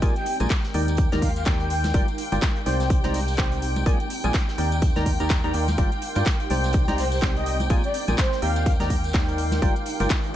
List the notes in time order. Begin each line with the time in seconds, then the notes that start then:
Already playing: C4 G4 G5
0.02 A#1 A#3 F4 G#4 A#4 D5 G#5, kick, closed hi-hat, tambourine
0.16 G5, closed hi-hat, tambourine
0.26 closed hi-hat, open hi-hat
0.31 F5
0.40 A#1 A#3 F4 G#4 A#4 D5 G#5, closed hi-hat, tambourine, high conga
0.50 kick, snare, clap, closed hi-hat, tambourine
0.64 snare, tambourine
0.74 D#2 D#3 D#4 G4 A#4 D5 G5, closed hi-hat, open hi-hat, high conga
0.88 closed hi-hat, tambourine
0.97 kick, closed hi-hat, tambourine
1.12 D#2 D#3 D#4 G4 A#4 D5 A#5, snare, closed hi-hat, tambourine, high conga
1.22 F5, kick, closed hi-hat, open hi-hat
1.36 F5, closed hi-hat, tambourine
1.42 D#2 D#3 D#4 G4 A#4 D5 G5, kick, snare, clap, closed hi-hat, tambourine
1.47 high conga
1.60 G5, closed hi-hat, tambourine
1.70 closed hi-hat, open hi-hat
1.84 snare, closed hi-hat, tambourine, high conga
1.94 G1 G3 F4 G4 A#4 D5 G5, kick, closed hi-hat, tambourine
2.08 closed hi-hat, tambourine
2.18 closed hi-hat, open hi-hat
2.32 G1 G3 F4 G4 A#4 D5 G5, closed hi-hat, tambourine, high conga
2.41 kick, snare, clap, closed hi-hat, tambourine
2.56 closed hi-hat, tambourine
2.66 C2 C3 D#4 G4 C5 D5 G5, snare, closed hi-hat, open hi-hat, high conga
2.80 snare, closed hi-hat, tambourine
2.90 C4, kick, closed hi-hat, tambourine
3.04 C2 C3 D#4 G4 C5 D5 A#5, snare, closed hi-hat, tambourine, high conga
3.14 snare, open hi-hat
3.28 closed hi-hat, tambourine
3.38 C2 C3 D#4 G4 C5 D5 G5, kick, snare, clap, closed hi-hat, tambourine, high conga
3.52 closed hi-hat, tambourine
3.62 closed hi-hat, open hi-hat
3.76 closed hi-hat, tambourine, high conga
3.86 A#1 A#3 F4 G#4 A#4 D5 G#5, kick, closed hi-hat, tambourine
4.00 closed hi-hat, tambourine
4.07 F5, closed hi-hat, open hi-hat
4.24 A#1 A#3 F4 G#4 A#4 D5 G#5, closed hi-hat, tambourine, high conga
4.34 kick, snare, clap, closed hi-hat, tambourine
4.48 snare, tambourine
4.58 D#2 D#3 D#4 G4 A#4 D5 G5, closed hi-hat, open hi-hat
4.72 closed hi-hat, tambourine
4.82 kick, closed hi-hat, tambourine
4.96 D#2 D#3 D#4 G4 A#4 D5 A#5, snare, closed hi-hat, tambourine, high conga
5.06 kick, closed hi-hat, open hi-hat
5.20 D#2 D#3 D#4 G4 A#4 D5 A#5, closed hi-hat, tambourine
5.26 G5
5.30 kick, snare, clap, closed hi-hat, tambourine, high conga
5.44 D#2 D#3 D#4 G4 A#4 D5 A#5, closed hi-hat, tambourine
5.54 D#2 D#4 G4 A#4 D5 G5, closed hi-hat, open hi-hat
5.68 snare, closed hi-hat, tambourine, high conga
5.78 G1 G3 F4 G4 A#4 D5 G5, kick, closed hi-hat, tambourine
5.92 closed hi-hat, tambourine
6.02 closed hi-hat, open hi-hat
6.15 G2 G3 F4 G4 A#4 D5 G5, closed hi-hat, tambourine, high conga
6.26 kick, snare, clap, closed hi-hat, tambourine
6.40 closed hi-hat, tambourine
6.50 C2 C3 D#4 G4 C5 D5 G5, snare, closed hi-hat, open hi-hat, high conga
6.64 snare, closed hi-hat, tambourine
6.73 C4, kick, closed hi-hat, tambourine
6.88 C2 C3 D#4 G4 C5 D5 A#5, snare, closed hi-hat, tambourine, high conga
6.98 C5, snare, open hi-hat
7.12 C5, closed hi-hat, tambourine
7.21 C2 C3 D#4 G4 C5 D5 G5, kick, snare, clap, closed hi-hat, tambourine, high conga
7.36 D#5, closed hi-hat, tambourine
7.46 closed hi-hat, open hi-hat
7.60 closed hi-hat, tambourine, high conga
7.70 A#1 A#3 F4 G#4 A#4 D5 G#5, kick, closed hi-hat, tambourine
7.83 D5, closed hi-hat, tambourine
7.94 F5, closed hi-hat, open hi-hat
8.08 A#1 A#3 F4 G#4 A#4 D5 G#5, closed hi-hat, tambourine, high conga
8.18 C5, kick, snare, clap, closed hi-hat, tambourine
8.32 snare, tambourine
8.42 D#2 D#3 D#4 G4 A#4 D5 F5 G5, closed hi-hat, open hi-hat
8.56 closed hi-hat, tambourine
8.66 kick, closed hi-hat, tambourine
8.80 D#2 D#3 D#4 G4 A#4 D5 A#5, snare, closed hi-hat, tambourine, high conga
8.90 kick, closed hi-hat, open hi-hat
9.04 closed hi-hat, tambourine
9.10 D#2 D#3 D#4 G4 A#4 D5 G5, kick, snare, closed hi-hat, tambourine, high conga
9.14 clap
9.28 closed hi-hat, tambourine
9.38 closed hi-hat, open hi-hat
9.52 snare, closed hi-hat, tambourine, high conga
9.62 G1 G3 F4 G4 A#4 D5 G5, kick, closed hi-hat, tambourine, riser
9.76 closed hi-hat, tambourine
9.86 closed hi-hat, open hi-hat
10.00 G1 G3 F4 G4 A#4 D5 G5, closed hi-hat, tambourine, high conga
10.09 kick, snare, clap, closed hi-hat, tambourine
10.23 closed hi-hat, tambourine